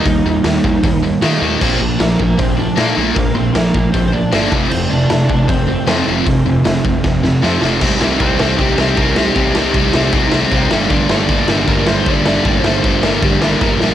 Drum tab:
CC |--------|x-------|--------|x-------|
HH |o-o-o-o-|--o-o-o-|o-o-o-o-|--o-o-o-|
SD |--o---o-|--o---o-|--o---o-|--o---o-|
BD |o--oo---|o--oo---|o--oo--o|---oo---|

CC |--------|x-x-x-x-|x-x-x-x-|x-x-x-x-|
HH |o-o-----|--------|--------|--------|
SD |--o-oooo|-o-o-o-o|-o-o-o-o|-o-o-o-o|
BD |o--oo---|o-o-o-o-|o-o-o-o-|o-o-o-o-|

CC |x-x-x---|
HH |--------|
SD |-o-o-ooo|
BD |o-o-o-o-|